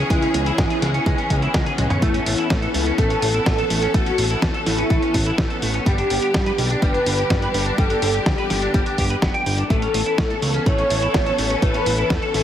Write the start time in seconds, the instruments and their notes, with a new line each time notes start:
Already playing: string section E3 B3 C#4 G#4, analog polysynth G#4
0.10 analog synth bass C#2, clean electric guitar G#3, analog polysynth E4, kick, closed hi-hat
0.22 clean electric guitar C#4, closed hi-hat
0.34 analog synth bass C#2, clean electric guitar G#3, closed hi-hat
0.46 clean electric guitar E4, closed hi-hat
0.58 analog synth bass G#1, clean electric guitar G#3, kick, snare, closed hi-hat
0.70 clean electric guitar G#4, closed hi-hat
0.82 analog synth bass C#2, clean electric guitar G#3, snare, closed hi-hat
0.94 clean electric guitar C#4, closed hi-hat
1.06 analog synth bass C#2, clean electric guitar G#3, kick, closed hi-hat
1.18 clean electric guitar C#4, closed hi-hat
1.30 analog synth bass C#2, clean electric guitar G#3, kick, closed hi-hat
1.42 clean electric guitar E4, closed hi-hat
1.54 analog synth bass C#2, clean electric guitar G#3, kick, snare, closed hi-hat
1.66 clean electric guitar G#4, closed hi-hat, high tom
1.78 analog synth bass C#2, clean electric guitar G#3, closed hi-hat, mid tom
1.90 clean electric guitar C#4, closed hi-hat, mid tom
2.02 analog synth bass A1, clean electric guitar A3, analog polysynth E4, string section A4, kick, closed hi-hat
2.14 clean electric guitar C#4, closed hi-hat
2.26 analog synth bass A1, clean electric guitar A3, open hi-hat
2.38 clean electric guitar E4, closed hi-hat
2.50 analog synth bass A2, clean electric guitar A3, kick, snare, closed hi-hat
2.62 clean electric guitar A4, closed hi-hat
2.74 analog synth bass C#2, clean electric guitar A3, open hi-hat
2.86 clean electric guitar C#4, closed hi-hat
2.98 analog synth bass A1, clean electric guitar A3, analog polysynth A4, kick, closed hi-hat
3.10 clean electric guitar C#4, closed hi-hat
3.22 analog synth bass A1, clean electric guitar A3, open hi-hat
3.34 clean electric guitar E4, closed hi-hat
3.46 analog synth bass A1, clean electric guitar A3, kick, snare, closed hi-hat
3.58 clean electric guitar A4, closed hi-hat
3.70 analog synth bass A1, clean electric guitar A3, open hi-hat
3.82 clean electric guitar C#4, closed hi-hat
3.94 analog synth bass A1, clean electric guitar A3, analog polysynth F#4, kick, closed hi-hat
4.06 clean electric guitar C#4, closed hi-hat
4.18 analog synth bass A1, clean electric guitar A3, open hi-hat
4.30 clean electric guitar E4, closed hi-hat
4.42 analog synth bass E2, clean electric guitar A3, analog polysynth E4, kick, snare, closed hi-hat
4.54 clean electric guitar A4, closed hi-hat
4.66 analog synth bass A1, clean electric guitar A3, analog polysynth E4, snare, open hi-hat
4.78 clean electric guitar C#4, closed hi-hat
4.90 analog synth bass A1, clean electric guitar A3, kick, closed hi-hat
5.02 clean electric guitar C#4, closed hi-hat
5.14 analog synth bass A1, clean electric guitar A3, kick, open hi-hat
5.26 clean electric guitar E4, closed hi-hat
5.38 analog synth bass A1, clean electric guitar A3, kick, snare, closed hi-hat
5.50 clean electric guitar A4, closed hi-hat
5.62 analog synth bass A1, clean electric guitar A3, open hi-hat
5.74 clean electric guitar C#4, closed hi-hat
5.86 analog synth bass G1, string section D3 G3 G4, clean electric guitar G3, analog polysynth G4, kick, closed hi-hat
5.98 clean electric guitar D4, closed hi-hat
6.10 analog synth bass G1, clean electric guitar G3, open hi-hat
6.22 clean electric guitar G4, closed hi-hat
6.34 analog synth bass G2, clean electric guitar G3, kick, snare, closed hi-hat
6.46 clean electric guitar B4, closed hi-hat
6.58 analog synth bass B1, clean electric guitar G3, open hi-hat
6.70 clean electric guitar D4, closed hi-hat
6.82 analog synth bass G1, clean electric guitar G3, analog polysynth B4, kick, closed hi-hat
6.94 clean electric guitar D4, closed hi-hat
7.06 analog synth bass G1, clean electric guitar G3, open hi-hat
7.18 clean electric guitar G4, closed hi-hat
7.30 analog synth bass G1, clean electric guitar G3, kick, snare, closed hi-hat
7.42 clean electric guitar B4, closed hi-hat
7.54 analog synth bass G1, clean electric guitar G3, open hi-hat
7.66 clean electric guitar D4, closed hi-hat
7.78 analog synth bass G1, clean electric guitar G3, analog polysynth A4, kick, closed hi-hat
7.90 clean electric guitar D4, closed hi-hat
8.02 analog synth bass G1, clean electric guitar G3, open hi-hat
8.14 clean electric guitar G4, closed hi-hat
8.26 analog synth bass D2, clean electric guitar G3, analog polysynth G4, kick, snare, closed hi-hat
8.38 clean electric guitar B4, closed hi-hat
8.50 analog synth bass G1, clean electric guitar G3, analog polysynth G4, snare, open hi-hat
8.62 clean electric guitar D4, closed hi-hat
8.74 analog synth bass G1, clean electric guitar G3, kick, closed hi-hat
8.86 clean electric guitar D4, closed hi-hat
8.98 analog synth bass G1, clean electric guitar G4, kick, open hi-hat
9.10 clean electric guitar B4, closed hi-hat
9.22 analog synth bass G1, clean electric guitar B3, kick, snare, closed hi-hat
9.34 clean electric guitar G5, closed hi-hat
9.46 analog synth bass G1, clean electric guitar G5, open hi-hat
9.58 clean electric guitar D4, closed hi-hat
9.70 analog synth bass A1, string section E3 B3 C#4 A4, clean electric guitar A3, analog polysynth A4, kick, closed hi-hat
9.82 clean electric guitar C#4, closed hi-hat
9.94 analog synth bass A1, clean electric guitar A3, open hi-hat
10.06 clean electric guitar E4, closed hi-hat
10.18 analog synth bass A2, clean electric guitar A3, kick, snare, closed hi-hat
10.30 clean electric guitar A4, closed hi-hat
10.42 analog synth bass C#2, clean electric guitar A3, open hi-hat
10.54 clean electric guitar C#4, closed hi-hat
10.66 analog synth bass A1, clean electric guitar A3, analog polysynth C#5, kick, closed hi-hat
10.78 clean electric guitar C#4, closed hi-hat
10.90 analog synth bass A1, clean electric guitar A3, open hi-hat
11.02 clean electric guitar E4, closed hi-hat
11.14 analog synth bass A1, clean electric guitar A3, kick, snare, closed hi-hat
11.26 clean electric guitar A4, closed hi-hat
11.38 analog synth bass A1, clean electric guitar A3, open hi-hat
11.50 clean electric guitar C#4, closed hi-hat
11.62 analog synth bass A1, clean electric guitar A3, analog polysynth B4, kick, closed hi-hat
11.74 clean electric guitar C#4, closed hi-hat
11.86 analog synth bass A1, clean electric guitar A3, open hi-hat
11.98 clean electric guitar E4, closed hi-hat
12.10 analog synth bass E2, clean electric guitar A3, analog polysynth A4, kick, snare, closed hi-hat
12.22 clean electric guitar A4, closed hi-hat
12.34 analog synth bass A1, clean electric guitar A3, analog polysynth A4, snare, open hi-hat